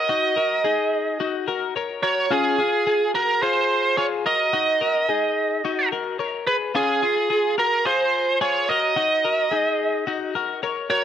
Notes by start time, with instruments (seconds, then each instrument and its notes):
Already playing: lead electric guitar D#5
0.09 clean electric guitar D#4 F#4
0.36 clean electric guitar F#4 A#4
0.64 clean electric guitar D#4 G#4
1.20 clean electric guitar D#4 F#4
1.48 clean electric guitar F#4 A#4
1.76 clean electric guitar A#4 C#5
2.03 clean electric guitar F#4 A#4, lead electric guitar C#5
2.31 clean electric guitar C#4 F4, lead electric guitar G#4
2.58 clean electric guitar F4 G#4
2.87 clean electric guitar F4 G#4
3.15 clean electric guitar F#4 A#4, lead electric guitar A#4
3.42 clean electric guitar F4 G#4, lead electric guitar C5
3.97 clean electric guitar F4 G#4, lead electric guitar C#5
4.26 clean electric guitar F#4 A#4, lead electric guitar D#5
4.53 clean electric guitar D#4 F#4
4.81 clean electric guitar F#4 A#4
5.09 clean electric guitar D#4 G#4
5.65 clean electric guitar D#4 F#4
5.92 clean electric guitar F#4 A#4
6.19 clean electric guitar A#4 C#5
6.47 clean electric guitar G#4 B4, lead electric guitar B4
6.75 clean electric guitar C#4 F4, lead electric guitar G#4
7.03 clean electric guitar F4 G#4
7.30 clean electric guitar F4 G#4
7.58 clean electric guitar F#4 A#4, lead electric guitar A#4
7.85 clean electric guitar F4 G#4, lead electric guitar C5
8.41 clean electric guitar F4 G#4, lead electric guitar C#5
8.69 clean electric guitar F#4 A#4, lead electric guitar D#5
8.96 clean electric guitar D#4 F#4
9.25 clean electric guitar F#4 A#4
9.51 clean electric guitar D#4 G#4
10.07 clean electric guitar D#4 F#4
10.35 clean electric guitar F#4 A#4
10.63 clean electric guitar A#4 C#5
10.90 clean electric guitar F#4 A#4, lead electric guitar C#5